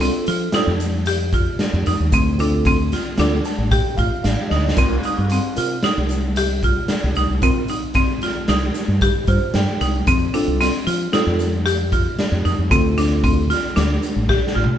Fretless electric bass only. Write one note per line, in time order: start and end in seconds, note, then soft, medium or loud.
0.28 0.48 F3 medium
0.67 1.48 F2 medium
1.73 1.83 F2 medium
1.87 1.97 F2 medium
2.00 2.10 D#2 medium
2.12 2.93 D2 loud
3.19 3.39 D2 medium
3.58 3.79 A1 medium
3.98 4.08 A1 medium
4.25 4.35 A1 medium
4.51 4.71 D2 medium
4.77 4.98 C2 medium
5.18 5.38 G2 medium
5.58 5.78 C3 medium
5.98 6.78 C2 medium
7.04 7.14 C2 medium
7.17 7.27 C2 medium
7.30 7.50 C2 medium
8.49 8.69 C2 medium
8.88 9.08 G2 medium
9.28 9.38 G2 medium
9.55 9.65 G2 medium
9.81 10.01 C2 medium
10.08 10.28 F2 loud
10.48 10.68 C2 medium
10.87 11.07 F3 medium
11.27 12.07 F2 medium
12.32 12.42 F2 medium
12.45 12.55 F2 medium
12.59 12.68 F2 medium
12.71 13.51 D2 loud
13.77 13.97 D2 medium
14.16 14.36 A1 medium
14.56 14.66 A1 medium